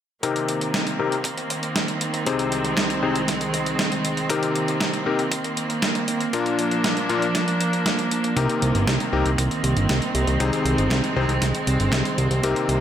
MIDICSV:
0, 0, Header, 1, 5, 480
1, 0, Start_track
1, 0, Key_signature, -3, "minor"
1, 0, Tempo, 508475
1, 218, Time_signature, 4, 2, 24, 8
1, 12087, End_track
2, 0, Start_track
2, 0, Title_t, "Electric grand piano"
2, 0, Program_c, 0, 2
2, 217, Note_on_c, 0, 48, 80
2, 217, Note_on_c, 0, 60, 72
2, 217, Note_on_c, 0, 63, 75
2, 217, Note_on_c, 0, 70, 89
2, 218, Note_on_c, 0, 67, 72
2, 909, Note_off_c, 0, 48, 0
2, 909, Note_off_c, 0, 60, 0
2, 909, Note_off_c, 0, 63, 0
2, 909, Note_off_c, 0, 70, 0
2, 910, Note_off_c, 0, 67, 0
2, 938, Note_on_c, 0, 48, 80
2, 938, Note_on_c, 0, 60, 75
2, 938, Note_on_c, 0, 63, 74
2, 938, Note_on_c, 0, 67, 74
2, 938, Note_on_c, 0, 70, 87
2, 1083, Note_off_c, 0, 48, 0
2, 1083, Note_off_c, 0, 60, 0
2, 1083, Note_off_c, 0, 63, 0
2, 1083, Note_off_c, 0, 67, 0
2, 1083, Note_off_c, 0, 70, 0
2, 2138, Note_on_c, 0, 48, 81
2, 2138, Note_on_c, 0, 68, 74
2, 2139, Note_on_c, 0, 60, 75
2, 2139, Note_on_c, 0, 63, 70
2, 2139, Note_on_c, 0, 72, 86
2, 2829, Note_off_c, 0, 48, 0
2, 2830, Note_off_c, 0, 60, 0
2, 2830, Note_off_c, 0, 63, 0
2, 2830, Note_off_c, 0, 68, 0
2, 2830, Note_off_c, 0, 72, 0
2, 2856, Note_on_c, 0, 48, 79
2, 2856, Note_on_c, 0, 60, 73
2, 2857, Note_on_c, 0, 63, 74
2, 2857, Note_on_c, 0, 68, 74
2, 2857, Note_on_c, 0, 72, 88
2, 3002, Note_off_c, 0, 48, 0
2, 3002, Note_off_c, 0, 60, 0
2, 3002, Note_off_c, 0, 63, 0
2, 3003, Note_off_c, 0, 68, 0
2, 3003, Note_off_c, 0, 72, 0
2, 4057, Note_on_c, 0, 70, 89
2, 4058, Note_on_c, 0, 48, 80
2, 4058, Note_on_c, 0, 60, 74
2, 4058, Note_on_c, 0, 63, 76
2, 4058, Note_on_c, 0, 67, 73
2, 4749, Note_off_c, 0, 48, 0
2, 4749, Note_off_c, 0, 60, 0
2, 4749, Note_off_c, 0, 63, 0
2, 4749, Note_off_c, 0, 67, 0
2, 4749, Note_off_c, 0, 70, 0
2, 4777, Note_on_c, 0, 63, 72
2, 4777, Note_on_c, 0, 70, 87
2, 4778, Note_on_c, 0, 48, 78
2, 4778, Note_on_c, 0, 60, 73
2, 4778, Note_on_c, 0, 67, 74
2, 4923, Note_off_c, 0, 48, 0
2, 4923, Note_off_c, 0, 60, 0
2, 4923, Note_off_c, 0, 63, 0
2, 4923, Note_off_c, 0, 67, 0
2, 4923, Note_off_c, 0, 70, 0
2, 5976, Note_on_c, 0, 46, 80
2, 5976, Note_on_c, 0, 58, 73
2, 5976, Note_on_c, 0, 62, 76
2, 5976, Note_on_c, 0, 65, 73
2, 5976, Note_on_c, 0, 70, 90
2, 6668, Note_off_c, 0, 46, 0
2, 6668, Note_off_c, 0, 58, 0
2, 6668, Note_off_c, 0, 65, 0
2, 6669, Note_off_c, 0, 62, 0
2, 6669, Note_off_c, 0, 70, 0
2, 6696, Note_on_c, 0, 46, 80
2, 6696, Note_on_c, 0, 58, 72
2, 6696, Note_on_c, 0, 65, 74
2, 6696, Note_on_c, 0, 70, 88
2, 6697, Note_on_c, 0, 62, 75
2, 6842, Note_off_c, 0, 46, 0
2, 6842, Note_off_c, 0, 58, 0
2, 6842, Note_off_c, 0, 65, 0
2, 6842, Note_off_c, 0, 70, 0
2, 6843, Note_off_c, 0, 62, 0
2, 7896, Note_on_c, 0, 48, 81
2, 7896, Note_on_c, 0, 60, 75
2, 7896, Note_on_c, 0, 63, 74
2, 7896, Note_on_c, 0, 70, 88
2, 7897, Note_on_c, 0, 67, 74
2, 8588, Note_off_c, 0, 48, 0
2, 8589, Note_off_c, 0, 60, 0
2, 8589, Note_off_c, 0, 63, 0
2, 8589, Note_off_c, 0, 67, 0
2, 8589, Note_off_c, 0, 70, 0
2, 8616, Note_on_c, 0, 48, 78
2, 8616, Note_on_c, 0, 67, 76
2, 8617, Note_on_c, 0, 60, 75
2, 8617, Note_on_c, 0, 63, 75
2, 8617, Note_on_c, 0, 70, 91
2, 8762, Note_off_c, 0, 48, 0
2, 8762, Note_off_c, 0, 67, 0
2, 8763, Note_off_c, 0, 60, 0
2, 8763, Note_off_c, 0, 63, 0
2, 8763, Note_off_c, 0, 70, 0
2, 9817, Note_on_c, 0, 63, 75
2, 9818, Note_on_c, 0, 48, 81
2, 9818, Note_on_c, 0, 60, 76
2, 9818, Note_on_c, 0, 72, 92
2, 9819, Note_on_c, 0, 68, 74
2, 10509, Note_off_c, 0, 60, 0
2, 10509, Note_off_c, 0, 63, 0
2, 10509, Note_off_c, 0, 72, 0
2, 10510, Note_off_c, 0, 48, 0
2, 10510, Note_off_c, 0, 68, 0
2, 10538, Note_on_c, 0, 48, 80
2, 10538, Note_on_c, 0, 68, 74
2, 10539, Note_on_c, 0, 60, 75
2, 10539, Note_on_c, 0, 63, 73
2, 10539, Note_on_c, 0, 72, 91
2, 10683, Note_off_c, 0, 48, 0
2, 10683, Note_off_c, 0, 68, 0
2, 10684, Note_off_c, 0, 60, 0
2, 10684, Note_off_c, 0, 63, 0
2, 10684, Note_off_c, 0, 72, 0
2, 11739, Note_on_c, 0, 48, 80
2, 11739, Note_on_c, 0, 60, 76
2, 11739, Note_on_c, 0, 63, 74
2, 11739, Note_on_c, 0, 67, 74
2, 11739, Note_on_c, 0, 70, 88
2, 12087, Note_off_c, 0, 48, 0
2, 12087, Note_off_c, 0, 60, 0
2, 12087, Note_off_c, 0, 63, 0
2, 12087, Note_off_c, 0, 67, 0
2, 12087, Note_off_c, 0, 70, 0
2, 12087, End_track
3, 0, Start_track
3, 0, Title_t, "String section"
3, 0, Program_c, 1, 48
3, 219, Note_on_c, 1, 51, 75
3, 219, Note_on_c, 1, 58, 67
3, 219, Note_on_c, 1, 60, 83
3, 2120, Note_off_c, 1, 58, 0
3, 2135, Note_on_c, 1, 36, 74
3, 2136, Note_on_c, 1, 56, 66
3, 4038, Note_off_c, 1, 36, 0
3, 4038, Note_off_c, 1, 56, 0
3, 4059, Note_on_c, 1, 58, 72
3, 5941, Note_off_c, 1, 51, 0
3, 5941, Note_off_c, 1, 60, 0
3, 5978, Note_on_c, 1, 53, 74
3, 5978, Note_on_c, 1, 62, 84
3, 7879, Note_off_c, 1, 53, 0
3, 7879, Note_off_c, 1, 62, 0
3, 7900, Note_on_c, 1, 51, 77
3, 7901, Note_on_c, 1, 60, 84
3, 9781, Note_off_c, 1, 58, 0
3, 9814, Note_on_c, 1, 56, 70
3, 11701, Note_off_c, 1, 51, 0
3, 11717, Note_off_c, 1, 56, 0
3, 11735, Note_on_c, 1, 51, 78
3, 11736, Note_on_c, 1, 58, 70
3, 12087, Note_off_c, 1, 51, 0
3, 12087, Note_off_c, 1, 58, 0
3, 12087, Note_off_c, 1, 60, 0
3, 12087, End_track
4, 0, Start_track
4, 0, Title_t, "Analog synth bass"
4, 0, Program_c, 2, 38
4, 7897, Note_on_c, 2, 36, 99
4, 8002, Note_off_c, 2, 36, 0
4, 8138, Note_on_c, 2, 36, 92
4, 8243, Note_off_c, 2, 36, 0
4, 8258, Note_on_c, 2, 31, 77
4, 8363, Note_off_c, 2, 31, 0
4, 8377, Note_on_c, 2, 36, 100
4, 8482, Note_off_c, 2, 36, 0
4, 8617, Note_on_c, 2, 36, 93
4, 8722, Note_off_c, 2, 36, 0
4, 8737, Note_on_c, 2, 36, 80
4, 8842, Note_off_c, 2, 36, 0
4, 8857, Note_on_c, 2, 36, 94
4, 8962, Note_off_c, 2, 36, 0
4, 9096, Note_on_c, 2, 36, 94
4, 9201, Note_off_c, 2, 36, 0
4, 9217, Note_on_c, 2, 31, 78
4, 9322, Note_off_c, 2, 31, 0
4, 9347, Note_on_c, 2, 36, 101
4, 9447, Note_off_c, 2, 36, 0
4, 9577, Note_on_c, 2, 36, 88
4, 9682, Note_off_c, 2, 36, 0
4, 9696, Note_on_c, 2, 36, 79
4, 9802, Note_off_c, 2, 36, 0
4, 9821, Note_on_c, 2, 36, 99
4, 9924, Note_off_c, 2, 36, 0
4, 10056, Note_on_c, 2, 36, 90
4, 10161, Note_off_c, 2, 36, 0
4, 10175, Note_on_c, 2, 31, 77
4, 10281, Note_off_c, 2, 31, 0
4, 10293, Note_on_c, 2, 36, 100
4, 10400, Note_off_c, 2, 36, 0
4, 10536, Note_on_c, 2, 36, 91
4, 10641, Note_off_c, 2, 36, 0
4, 10656, Note_on_c, 2, 36, 81
4, 10761, Note_off_c, 2, 36, 0
4, 10778, Note_on_c, 2, 36, 98
4, 10882, Note_off_c, 2, 36, 0
4, 11017, Note_on_c, 2, 36, 93
4, 11122, Note_off_c, 2, 36, 0
4, 11136, Note_on_c, 2, 31, 78
4, 11242, Note_off_c, 2, 31, 0
4, 11250, Note_on_c, 2, 36, 96
4, 11358, Note_off_c, 2, 36, 0
4, 11497, Note_on_c, 2, 36, 91
4, 11602, Note_off_c, 2, 36, 0
4, 11618, Note_on_c, 2, 36, 78
4, 11722, Note_off_c, 2, 36, 0
4, 11741, Note_on_c, 2, 36, 100
4, 11844, Note_off_c, 2, 36, 0
4, 11975, Note_on_c, 2, 36, 93
4, 12081, Note_off_c, 2, 36, 0
4, 12087, End_track
5, 0, Start_track
5, 0, Title_t, "Drums"
5, 219, Note_on_c, 9, 36, 118
5, 219, Note_on_c, 9, 42, 91
5, 313, Note_off_c, 9, 42, 0
5, 314, Note_off_c, 9, 36, 0
5, 339, Note_on_c, 9, 42, 39
5, 433, Note_off_c, 9, 42, 0
5, 458, Note_on_c, 9, 42, 61
5, 552, Note_off_c, 9, 42, 0
5, 580, Note_on_c, 9, 42, 38
5, 674, Note_off_c, 9, 42, 0
5, 699, Note_on_c, 9, 36, 90
5, 699, Note_on_c, 9, 38, 110
5, 699, Note_on_c, 9, 42, 94
5, 793, Note_off_c, 9, 38, 0
5, 793, Note_off_c, 9, 42, 0
5, 794, Note_off_c, 9, 36, 0
5, 819, Note_on_c, 9, 42, 37
5, 913, Note_off_c, 9, 42, 0
5, 1058, Note_on_c, 9, 42, 36
5, 1153, Note_off_c, 9, 42, 0
5, 1171, Note_on_c, 9, 36, 120
5, 1179, Note_on_c, 9, 42, 88
5, 1266, Note_off_c, 9, 36, 0
5, 1273, Note_off_c, 9, 42, 0
5, 1298, Note_on_c, 9, 42, 37
5, 1393, Note_off_c, 9, 42, 0
5, 1418, Note_on_c, 9, 42, 66
5, 1513, Note_off_c, 9, 42, 0
5, 1538, Note_on_c, 9, 42, 39
5, 1632, Note_off_c, 9, 42, 0
5, 1658, Note_on_c, 9, 38, 108
5, 1658, Note_on_c, 9, 42, 90
5, 1659, Note_on_c, 9, 36, 90
5, 1753, Note_off_c, 9, 36, 0
5, 1753, Note_off_c, 9, 38, 0
5, 1753, Note_off_c, 9, 42, 0
5, 1778, Note_on_c, 9, 42, 38
5, 1872, Note_off_c, 9, 42, 0
5, 1898, Note_on_c, 9, 42, 66
5, 1992, Note_off_c, 9, 42, 0
5, 2018, Note_on_c, 9, 42, 39
5, 2112, Note_off_c, 9, 42, 0
5, 2138, Note_on_c, 9, 42, 87
5, 2146, Note_on_c, 9, 36, 121
5, 2232, Note_off_c, 9, 42, 0
5, 2241, Note_off_c, 9, 36, 0
5, 2258, Note_on_c, 9, 42, 39
5, 2352, Note_off_c, 9, 42, 0
5, 2378, Note_on_c, 9, 42, 61
5, 2473, Note_off_c, 9, 42, 0
5, 2497, Note_on_c, 9, 42, 37
5, 2592, Note_off_c, 9, 42, 0
5, 2612, Note_on_c, 9, 36, 104
5, 2619, Note_on_c, 9, 38, 114
5, 2619, Note_on_c, 9, 42, 88
5, 2707, Note_off_c, 9, 36, 0
5, 2713, Note_off_c, 9, 38, 0
5, 2713, Note_off_c, 9, 42, 0
5, 2739, Note_on_c, 9, 42, 36
5, 2833, Note_off_c, 9, 42, 0
5, 2979, Note_on_c, 9, 42, 37
5, 3073, Note_off_c, 9, 42, 0
5, 3097, Note_on_c, 9, 38, 59
5, 3097, Note_on_c, 9, 42, 88
5, 3106, Note_on_c, 9, 36, 105
5, 3192, Note_off_c, 9, 38, 0
5, 3192, Note_off_c, 9, 42, 0
5, 3200, Note_off_c, 9, 36, 0
5, 3218, Note_on_c, 9, 42, 37
5, 3313, Note_off_c, 9, 42, 0
5, 3340, Note_on_c, 9, 42, 62
5, 3434, Note_off_c, 9, 42, 0
5, 3459, Note_on_c, 9, 42, 37
5, 3553, Note_off_c, 9, 42, 0
5, 3578, Note_on_c, 9, 36, 109
5, 3578, Note_on_c, 9, 38, 112
5, 3578, Note_on_c, 9, 42, 87
5, 3672, Note_off_c, 9, 36, 0
5, 3673, Note_off_c, 9, 38, 0
5, 3673, Note_off_c, 9, 42, 0
5, 3699, Note_on_c, 9, 42, 37
5, 3793, Note_off_c, 9, 42, 0
5, 3820, Note_on_c, 9, 42, 62
5, 3914, Note_off_c, 9, 42, 0
5, 3939, Note_on_c, 9, 42, 36
5, 4034, Note_off_c, 9, 42, 0
5, 4055, Note_on_c, 9, 36, 114
5, 4059, Note_on_c, 9, 42, 83
5, 4149, Note_off_c, 9, 36, 0
5, 4153, Note_off_c, 9, 42, 0
5, 4179, Note_on_c, 9, 42, 37
5, 4274, Note_off_c, 9, 42, 0
5, 4300, Note_on_c, 9, 42, 58
5, 4394, Note_off_c, 9, 42, 0
5, 4420, Note_on_c, 9, 42, 36
5, 4514, Note_off_c, 9, 42, 0
5, 4536, Note_on_c, 9, 36, 110
5, 4538, Note_on_c, 9, 38, 121
5, 4538, Note_on_c, 9, 42, 82
5, 4630, Note_off_c, 9, 36, 0
5, 4633, Note_off_c, 9, 38, 0
5, 4633, Note_off_c, 9, 42, 0
5, 4659, Note_on_c, 9, 42, 36
5, 4754, Note_off_c, 9, 42, 0
5, 4899, Note_on_c, 9, 42, 34
5, 4993, Note_off_c, 9, 42, 0
5, 5018, Note_on_c, 9, 36, 123
5, 5019, Note_on_c, 9, 42, 83
5, 5112, Note_off_c, 9, 36, 0
5, 5113, Note_off_c, 9, 42, 0
5, 5140, Note_on_c, 9, 42, 36
5, 5234, Note_off_c, 9, 42, 0
5, 5259, Note_on_c, 9, 42, 60
5, 5353, Note_off_c, 9, 42, 0
5, 5379, Note_on_c, 9, 42, 37
5, 5474, Note_off_c, 9, 42, 0
5, 5496, Note_on_c, 9, 36, 113
5, 5499, Note_on_c, 9, 38, 117
5, 5499, Note_on_c, 9, 42, 82
5, 5591, Note_off_c, 9, 36, 0
5, 5593, Note_off_c, 9, 38, 0
5, 5593, Note_off_c, 9, 42, 0
5, 5618, Note_on_c, 9, 42, 35
5, 5713, Note_off_c, 9, 42, 0
5, 5739, Note_on_c, 9, 42, 60
5, 5833, Note_off_c, 9, 42, 0
5, 5858, Note_on_c, 9, 42, 36
5, 5952, Note_off_c, 9, 42, 0
5, 5978, Note_on_c, 9, 42, 84
5, 5982, Note_on_c, 9, 36, 120
5, 6073, Note_off_c, 9, 42, 0
5, 6077, Note_off_c, 9, 36, 0
5, 6098, Note_on_c, 9, 42, 36
5, 6193, Note_off_c, 9, 42, 0
5, 6218, Note_on_c, 9, 42, 56
5, 6313, Note_off_c, 9, 42, 0
5, 6338, Note_on_c, 9, 42, 35
5, 6433, Note_off_c, 9, 42, 0
5, 6459, Note_on_c, 9, 38, 118
5, 6459, Note_on_c, 9, 42, 83
5, 6461, Note_on_c, 9, 36, 93
5, 6553, Note_off_c, 9, 38, 0
5, 6553, Note_off_c, 9, 42, 0
5, 6555, Note_off_c, 9, 36, 0
5, 6578, Note_on_c, 9, 42, 34
5, 6673, Note_off_c, 9, 42, 0
5, 6698, Note_on_c, 9, 42, 33
5, 6792, Note_off_c, 9, 42, 0
5, 6819, Note_on_c, 9, 42, 34
5, 6913, Note_off_c, 9, 42, 0
5, 6937, Note_on_c, 9, 36, 111
5, 6939, Note_on_c, 9, 38, 59
5, 6939, Note_on_c, 9, 42, 78
5, 7031, Note_off_c, 9, 36, 0
5, 7033, Note_off_c, 9, 38, 0
5, 7033, Note_off_c, 9, 42, 0
5, 7059, Note_on_c, 9, 42, 36
5, 7154, Note_off_c, 9, 42, 0
5, 7179, Note_on_c, 9, 42, 58
5, 7274, Note_off_c, 9, 42, 0
5, 7299, Note_on_c, 9, 42, 34
5, 7393, Note_off_c, 9, 42, 0
5, 7418, Note_on_c, 9, 38, 115
5, 7418, Note_on_c, 9, 42, 81
5, 7419, Note_on_c, 9, 36, 109
5, 7513, Note_off_c, 9, 38, 0
5, 7513, Note_off_c, 9, 42, 0
5, 7514, Note_off_c, 9, 36, 0
5, 7540, Note_on_c, 9, 42, 34
5, 7634, Note_off_c, 9, 42, 0
5, 7660, Note_on_c, 9, 42, 58
5, 7754, Note_off_c, 9, 42, 0
5, 7779, Note_on_c, 9, 42, 36
5, 7874, Note_off_c, 9, 42, 0
5, 7897, Note_on_c, 9, 36, 108
5, 7899, Note_on_c, 9, 42, 85
5, 7992, Note_off_c, 9, 36, 0
5, 7993, Note_off_c, 9, 42, 0
5, 8019, Note_on_c, 9, 42, 37
5, 8114, Note_off_c, 9, 42, 0
5, 8139, Note_on_c, 9, 42, 57
5, 8234, Note_off_c, 9, 42, 0
5, 8260, Note_on_c, 9, 42, 35
5, 8354, Note_off_c, 9, 42, 0
5, 8377, Note_on_c, 9, 36, 95
5, 8378, Note_on_c, 9, 38, 113
5, 8378, Note_on_c, 9, 42, 82
5, 8471, Note_off_c, 9, 36, 0
5, 8473, Note_off_c, 9, 38, 0
5, 8473, Note_off_c, 9, 42, 0
5, 8499, Note_on_c, 9, 42, 34
5, 8593, Note_off_c, 9, 42, 0
5, 8738, Note_on_c, 9, 42, 35
5, 8832, Note_off_c, 9, 42, 0
5, 8858, Note_on_c, 9, 36, 112
5, 8859, Note_on_c, 9, 42, 83
5, 8952, Note_off_c, 9, 36, 0
5, 8953, Note_off_c, 9, 42, 0
5, 8979, Note_on_c, 9, 42, 35
5, 9074, Note_off_c, 9, 42, 0
5, 9099, Note_on_c, 9, 42, 62
5, 9194, Note_off_c, 9, 42, 0
5, 9219, Note_on_c, 9, 42, 36
5, 9313, Note_off_c, 9, 42, 0
5, 9339, Note_on_c, 9, 38, 110
5, 9339, Note_on_c, 9, 42, 84
5, 9347, Note_on_c, 9, 36, 103
5, 9433, Note_off_c, 9, 38, 0
5, 9433, Note_off_c, 9, 42, 0
5, 9442, Note_off_c, 9, 36, 0
5, 9459, Note_on_c, 9, 42, 35
5, 9553, Note_off_c, 9, 42, 0
5, 9579, Note_on_c, 9, 42, 60
5, 9674, Note_off_c, 9, 42, 0
5, 9699, Note_on_c, 9, 42, 37
5, 9794, Note_off_c, 9, 42, 0
5, 9819, Note_on_c, 9, 42, 85
5, 9821, Note_on_c, 9, 36, 105
5, 9914, Note_off_c, 9, 42, 0
5, 9916, Note_off_c, 9, 36, 0
5, 9940, Note_on_c, 9, 42, 37
5, 10035, Note_off_c, 9, 42, 0
5, 10059, Note_on_c, 9, 42, 59
5, 10153, Note_off_c, 9, 42, 0
5, 10179, Note_on_c, 9, 42, 36
5, 10274, Note_off_c, 9, 42, 0
5, 10293, Note_on_c, 9, 36, 90
5, 10300, Note_on_c, 9, 38, 109
5, 10300, Note_on_c, 9, 42, 86
5, 10388, Note_off_c, 9, 36, 0
5, 10394, Note_off_c, 9, 38, 0
5, 10394, Note_off_c, 9, 42, 0
5, 10420, Note_on_c, 9, 42, 36
5, 10514, Note_off_c, 9, 42, 0
5, 10659, Note_on_c, 9, 42, 36
5, 10753, Note_off_c, 9, 42, 0
5, 10778, Note_on_c, 9, 36, 100
5, 10779, Note_on_c, 9, 38, 55
5, 10779, Note_on_c, 9, 42, 82
5, 10872, Note_off_c, 9, 36, 0
5, 10873, Note_off_c, 9, 38, 0
5, 10873, Note_off_c, 9, 42, 0
5, 10899, Note_on_c, 9, 42, 38
5, 10993, Note_off_c, 9, 42, 0
5, 11019, Note_on_c, 9, 42, 61
5, 11114, Note_off_c, 9, 42, 0
5, 11138, Note_on_c, 9, 42, 36
5, 11232, Note_off_c, 9, 42, 0
5, 11250, Note_on_c, 9, 36, 87
5, 11258, Note_on_c, 9, 38, 106
5, 11258, Note_on_c, 9, 42, 86
5, 11344, Note_off_c, 9, 36, 0
5, 11352, Note_off_c, 9, 38, 0
5, 11352, Note_off_c, 9, 42, 0
5, 11379, Note_on_c, 9, 42, 36
5, 11473, Note_off_c, 9, 42, 0
5, 11499, Note_on_c, 9, 42, 61
5, 11594, Note_off_c, 9, 42, 0
5, 11620, Note_on_c, 9, 42, 37
5, 11714, Note_off_c, 9, 42, 0
5, 11738, Note_on_c, 9, 42, 91
5, 11741, Note_on_c, 9, 36, 103
5, 11833, Note_off_c, 9, 42, 0
5, 11835, Note_off_c, 9, 36, 0
5, 11859, Note_on_c, 9, 42, 38
5, 11954, Note_off_c, 9, 42, 0
5, 11979, Note_on_c, 9, 42, 62
5, 12074, Note_off_c, 9, 42, 0
5, 12087, End_track
0, 0, End_of_file